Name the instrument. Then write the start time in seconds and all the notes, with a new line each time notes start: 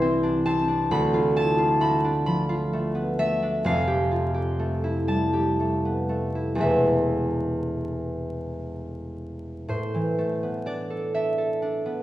harp
Already playing: C2 E3 D4 E4 D5 E5 G5 C6
0.02 C4
0.23 D4
0.46 C4 A5
0.68 D4
0.91 D2 B5
1.14 F4
1.36 E4 A5
1.58 F4
1.80 A3 B5
2.04 D4
2.26 F3 B5
2.49 F4
2.73 A3
2.95 B3
3.19 A3 E5
3.42 D4
3.64 F1 F2 F5
3.87 G4
4.11 F4
4.34 G4
4.59 A3
4.84 E4
5.07 G3 A5
5.33 G4
5.60 A3
5.85 B3
6.09 A3
6.35 E4
6.55 E1 E2 A3 B3
6.59 D4 E5
9.68 A2 C5
9.94 E3
10.18 A3
10.43 B3
10.66 D4 D5
10.90 A4
11.14 D4 E5
11.38 A4
11.62 D4
11.86 B3